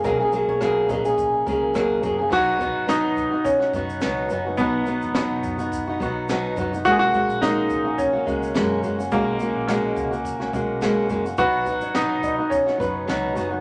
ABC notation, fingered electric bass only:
X:1
M:4/4
L:1/16
Q:"Swing 16ths" 1/4=106
K:B
V:1 name="Fingered electric bass" clef=bass
B,,,3 B,,,3 A,,,4 C,,4 F,,,2 | B,,,3 G,,,6- G,,, F,,,2 C,,2 F,,,2 | B,,,3 E,,,3 F,,,4 B,,,4 F,,,2 | B,,,3 A,,,6- A,,, C,,2 F,,2 F,,,2 |
B,,,3 A,,,3 C,,4 B,,,4 F,,,2 | B,,,3 G,,,6- G,,, F,,,2 C,,2 F,,,2 |]